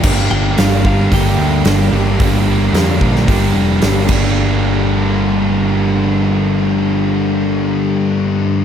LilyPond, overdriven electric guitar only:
\new Staff \with { instrumentName = "Overdriven electric guitar" } { \clef bass \time 4/4 \key g \minor \tempo 4 = 111 <g, d g bes d' g'>2 <g, d g bes d' g'>2 | <g, d g bes d' g'>2 <g, d g bes d' g'>4. <g, d g bes d' g'>8~ | <g, d g bes d' g'>1~ | <g, d g bes d' g'>1 | }